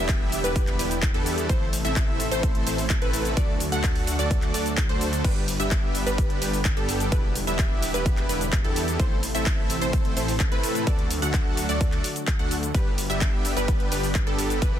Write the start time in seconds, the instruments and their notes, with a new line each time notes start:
Already playing: detuned saw bass E1, analog synth pad D3 G3 B3 E4 G4, supersaw synth B3 D4 E4 G4 E5, synth pluck E5
0.09 kick, clap, closed hi-hat, shaker
0.32 open hi-hat, shaker
0.44 detuned saw bass E1, supersaw synth B3 D4 E4 G4 B4, synth pluck B4, closed hi-hat, shaker
0.56 kick, closed hi-hat, shaker
0.67 clap, closed hi-hat
0.79 detuned saw bass E1, supersaw synth B3 D4 E4 G4 B4, synth pluck B4, open hi-hat, shaker
0.91 closed hi-hat, shaker
1.02 kick, clap, closed hi-hat, shaker
1.14 detuned saw bass E2, supersaw synth B3 D4 E4 G4 A4, synth pluck A4, closed hi-hat
1.26 open hi-hat, shaker
1.38 closed hi-hat, shaker
1.49 detuned saw bass A1, analog synth pad C3 E3 A3 A4, supersaw synth A3 C4 E4 A4 C5, synth pluck C5, kick, closed hi-hat, shaker
1.73 open hi-hat, shaker
1.85 detuned saw bass A1, supersaw synth A3 C4 E4 A4 E5, synth pluck E5, closed hi-hat, shaker
1.96 kick, clap, closed hi-hat, shaker
2.20 open hi-hat, shaker
2.31 detuned saw bass A1, supersaw synth A3 C4 E4 A4 C5, synth pluck C5, closed hi-hat, shaker
2.43 kick, closed hi-hat, shaker
2.55 closed hi-hat
2.67 detuned saw bass A1, supersaw synth A3 C4 E4 A4 C5, synth pluck C5, open hi-hat, shaker
2.78 open hi-hat, shaker
2.90 kick, clap, closed hi-hat, shaker
3.02 detuned saw bass A1, supersaw synth A3 C4 E4 A4 B4, synth pluck B4, closed hi-hat
3.13 open hi-hat, shaker
3.25 closed hi-hat, shaker
3.37 detuned saw bass D2, analog synth pad D3 F#3 F#4, supersaw synth A3 D4 F#4 A4 D5, synth pluck D5, kick, closed hi-hat, shaker
3.60 open hi-hat, shaker
3.72 detuned saw bass D2, supersaw synth A3 D4 F#4 A4 F#5, synth pluck F#5, closed hi-hat, shaker
3.84 kick, clap, closed hi-hat, shaker
3.96 open hi-hat
4.07 open hi-hat, shaker
4.19 detuned saw bass D2, supersaw synth A3 D4 F#4 A4 D5, synth pluck D5, closed hi-hat, shaker
4.31 kick, closed hi-hat, shaker
4.42 clap, closed hi-hat
4.54 detuned saw bass D2, supersaw synth A3 D4 F#4 A4 D5, synth pluck D5, open hi-hat, shaker
4.66 closed hi-hat, shaker
4.77 kick, clap, closed hi-hat, shaker
4.89 detuned saw bass D2, supersaw synth A3 D4 F#4 A4 C5, synth pluck C5, closed hi-hat
5.01 open hi-hat, shaker
5.13 closed hi-hat, shaker
5.24 detuned saw bass G1, analog synth pad D3 G3 B3 G4 B4, supersaw synth G3 B3 D4 G4 B4, synth pluck B4, kick, closed hi-hat, crash, shaker
5.48 open hi-hat, shaker
5.60 detuned saw bass G1, supersaw synth G3 B3 D4 G4 E5, synth pluck E5, closed hi-hat, shaker
5.71 kick, clap, closed hi-hat, shaker
5.95 open hi-hat, shaker
6.07 detuned saw bass G1, supersaw synth G3 B3 D4 G4 B4, synth pluck B4, closed hi-hat, shaker
6.18 kick, closed hi-hat, shaker
6.30 closed hi-hat
6.42 detuned saw bass G1, supersaw synth G3 B3 D4 G4 B4, synth pluck B4, open hi-hat, shaker
6.53 open hi-hat, shaker
6.65 kick, clap, closed hi-hat, shaker
6.77 detuned saw bass G1, supersaw synth G3 B3 D4 G4 A4, synth pluck A4, closed hi-hat
6.89 open hi-hat, shaker
7.00 closed hi-hat, shaker
7.12 detuned saw bass E1, analog synth pad G3 B3 E4, supersaw synth B3 D4 E4 G4 B4, synth pluck B4, kick, closed hi-hat, shaker
7.35 open hi-hat, shaker
7.47 detuned saw bass E1, supersaw synth B3 D4 E4 G4 E5, synth pluck E5, closed hi-hat, shaker
7.59 kick, clap, closed hi-hat, shaker
7.82 open hi-hat, shaker
7.94 detuned saw bass E1, supersaw synth B3 D4 E4 G4 B4, synth pluck B4, closed hi-hat, shaker
8.06 kick, closed hi-hat, shaker
8.17 clap, closed hi-hat
8.29 detuned saw bass E1, supersaw synth B3 D4 E4 G4 B4, synth pluck B4, open hi-hat, shaker
8.41 closed hi-hat, shaker
8.53 kick, clap, closed hi-hat, shaker
8.64 detuned saw bass E2, supersaw synth B3 D4 E4 G4 A4, synth pluck A4, closed hi-hat
8.76 open hi-hat, shaker
8.88 closed hi-hat, shaker
9.00 detuned saw bass A1, analog synth pad C3 E3 A3 A4, supersaw synth A3 C4 E4 A4 C5, synth pluck C5, kick, closed hi-hat, shaker
9.23 open hi-hat, shaker
9.35 detuned saw bass A1, supersaw synth A3 C4 E4 A4 E5, synth pluck E5, closed hi-hat, shaker
9.46 kick, clap, closed hi-hat, shaker
9.70 open hi-hat, shaker
9.81 detuned saw bass A1, supersaw synth A3 C4 E4 A4 C5, synth pluck C5, closed hi-hat, shaker
9.93 kick, closed hi-hat, shaker
10.05 closed hi-hat
10.17 detuned saw bass A1, supersaw synth A3 C4 E4 A4 C5, synth pluck C5, open hi-hat, shaker
10.28 open hi-hat, shaker
10.40 kick, clap, closed hi-hat, shaker
10.52 detuned saw bass A2, supersaw synth A3 C4 E4 A4 B4, synth pluck B4, closed hi-hat
10.63 open hi-hat, shaker
10.75 closed hi-hat, shaker
10.87 detuned saw bass D2, analog synth pad D3 F#3 F#4, supersaw synth A3 D4 F#4 A4 D5, synth pluck D5, kick, closed hi-hat, shaker
10.99 closed hi-hat
11.10 open hi-hat, shaker
11.22 detuned saw bass D2, supersaw synth A3 D4 F#4 A4 F#5, synth pluck F#5, closed hi-hat, shaker
11.34 kick, clap, closed hi-hat, shaker
11.57 open hi-hat, shaker
11.69 detuned saw bass D2, supersaw synth A3 D4 F#4 A4 D5, synth pluck D5, closed hi-hat, shaker
11.81 kick, closed hi-hat, shaker
11.92 clap, closed hi-hat
12.04 open hi-hat, shaker
12.16 closed hi-hat, shaker
12.27 kick, clap, closed hi-hat, shaker
12.39 detuned saw bass D2, supersaw synth A3 D4 F#4 A4 F#5, synth pluck F#5, closed hi-hat
12.51 open hi-hat, shaker
12.63 closed hi-hat, shaker
12.74 detuned saw bass G1, supersaw synth G3 B3 D4 G4 B4, analog synth pad G3 B3 G4 B4, synth pluck B4, kick, closed hi-hat, shaker
12.98 open hi-hat, shaker
13.10 detuned saw bass G1, supersaw synth G3 B3 D4 G4 E5, synth pluck E5, closed hi-hat, shaker
13.21 kick, clap, closed hi-hat, shaker
13.45 open hi-hat, shaker
13.56 detuned saw bass G1, supersaw synth G3 B3 D4 G4 B4, synth pluck B4, closed hi-hat, shaker
13.68 kick, closed hi-hat, shaker
13.80 closed hi-hat
13.92 detuned saw bass G1, supersaw synth G3 B3 D4 G4 B4, synth pluck B4, open hi-hat, shaker
14.03 open hi-hat, shaker
14.15 kick, clap, closed hi-hat, shaker
14.27 detuned saw bass G1, supersaw synth G3 B3 D4 G4 A4, synth pluck A4, closed hi-hat
14.39 open hi-hat, shaker
14.50 closed hi-hat, shaker
14.62 detuned saw bass E1, supersaw synth B3 D4 E4 G4 B4, analog synth pad E4, synth pluck B4, kick, closed hi-hat, shaker